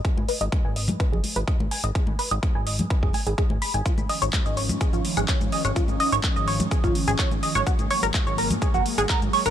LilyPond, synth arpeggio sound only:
\new Staff \with { instrumentName = "Synth arpeggio sound" } { \time 4/4 \key cis \mixolydian \tempo 4 = 126 gis'16 r16 b'16 dis''16 r16 gis''16 dis''16 r16 b'16 gis'16 r16 b'16 dis''16 r16 gis''16 dis''16 | gis'16 r16 b'16 dis''16 r16 gis''16 dis''16 r16 b'16 gis'16 gis''16 gis'16 gis'16 r16 b''16 gis''16 | eis'16 r16 dis''16 cis''16 r16 dis''16 cis''16 r16 gis'16 eis'16 r16 gis'16 cis''16 r16 dis''16 cis''16 | eis'16 r16 dis''16 cis''16 r16 dis''16 cis''16 r16 gis'16 eis'16 r16 gis'16 cis''16 r16 dis''16 cis''16 |
fis'16 r16 cis''16 ais'16 r16 cis''16 ais'16 r16 gis'16 fis'16 r16 gis'16 ais'16 r16 cis''16 ais'16 | }